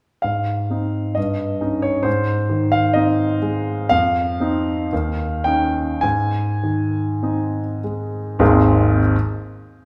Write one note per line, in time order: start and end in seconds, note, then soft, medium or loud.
0.22 1.14 G#2 soft
0.22 1.16 F5 medium
0.70 1.12 C4 soft
0.70 1.13 D#4 soft
1.15 2.03 G2 soft
1.15 1.83 D#5 medium
1.61 2.02 C#4 soft
1.61 2.02 D#4 soft
1.82 2.05 C#5 medium
2.03 3.86 G#2 soft
2.03 2.72 C5 medium
2.50 3.23 D#3 soft
2.72 2.95 F5 medium
2.93 3.38 C4 soft
2.93 3.39 D#4 soft
2.93 3.90 D#5 medium
3.42 3.91 G#3 soft
3.89 4.88 F2 medium
3.89 5.44 F5 medium
4.40 4.87 C4 soft
4.40 4.88 D#4 soft
4.93 6.00 D#2 medium
5.44 5.99 C#4 soft
5.44 5.99 D#4 soft
5.44 6.03 G5 medium
6.01 8.36 G#2 soft
6.01 7.82 G#5 medium
6.63 7.59 D#3 soft
7.23 7.79 C4 soft
7.23 7.79 D#4 soft
7.84 8.38 G#3 soft
8.39 8.99 G#1 medium
8.39 8.99 D#2 medium
8.39 8.99 G#3 medium
8.39 8.99 C4 medium
8.39 8.99 D#4 medium
8.39 8.99 G#4 medium